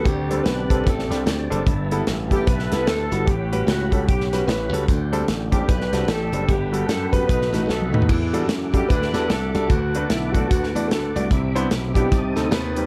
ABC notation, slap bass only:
X:1
M:4/4
L:1/8
Q:"Swing" 1/4=149
K:G
V:1 name="Slap bass" clef=bass
D,,2 B,,, C,, A,,, C,, D,, F,,, | G,,,2 A,,,2 B,,, C,, D,, G,,, | A,,,2 ^C,,2 B,,,2 A,,, C,, | D,,2 A,,,2 B,,, C,, A,,, F,,, |
G,,,2 F,,2 B,,, A,,, B,,, ^D,, | E,,2 F,,2 D,, E,, C,, C,, | D,,2 B,,,2 D,, E,, D,, C,, | C,,2 B,,,2 C,, D,, _E,,2 |]